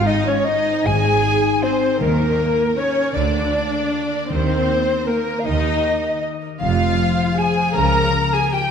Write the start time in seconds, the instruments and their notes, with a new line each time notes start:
Already playing: timpani G#2, harp G#2 C4
0.06 harp D#4, viola section D#4, violin section D#5, flute D#5
0.26 viola section C#4, harp G#4, flute C#5, violin section C#5
0.45 viola section D#4, harp C5, flute D#5, violin section D#5
0.66 harp G#4
0.85 double bass section G#1, harp G#2, cello section G#2, viola section G#4, violin section G#5, flute G#5
1.04 harp C4
1.23 harp D#4
1.43 harp G#4
1.63 viola section C4, violin section C5, flute C5, harp C5
1.82 harp G#4
2.00 double bass section D#2, harp D#3, cello section D#3, timpani D#3, viola section A#3, violin section A#4, flute A#4
2.19 harp D#4
2.38 harp G4
2.58 harp A#4
2.77 viola section C#4, violin section C#5, flute C#5, harp D#5
2.96 harp A#4
3.14 double bass section D2, cello section D3, harp D3, viola section D4, violin section D5, flute D5
3.33 harp A#3
3.53 harp F4
3.73 harp A#4
3.93 harp F4
4.12 harp A#4
4.29 double bass section D#2, harp D#3, timpani D#3, cello section D#3, viola section C4, violin section C5, flute C5
4.48 harp D#4
4.68 harp G4
4.87 harp A#4
5.06 viola section A#3, violin section A#4, flute A#4, harp D#5
5.26 harp A#4
5.39 flute F5
5.45 double bass section D#2, harp D#3, cello section D#3, viola section D#4, violin section D#5, flute D#5
5.64 harp D#4
5.84 harp G4
6.03 harp A#4
6.23 harp D#5
6.42 harp A#4
6.60 double bass section F1, cello section F2, harp F3, viola section F4, flute F5, violin section F5
6.78 harp F4
6.98 harp G#4
7.17 harp C5
7.36 viola section G#4, harp F5, violin section G#5, flute G#5
7.57 harp C5
7.75 double bass section C#2, harp C#3, cello section C#3, viola section A#4, violin section A#5, flute A#5
7.93 harp A#3
8.13 harp F4
8.33 viola section G#4, harp A#4, flute G#5, violin section G#5
8.52 harp F4, viola section G4, violin section G5, flute G5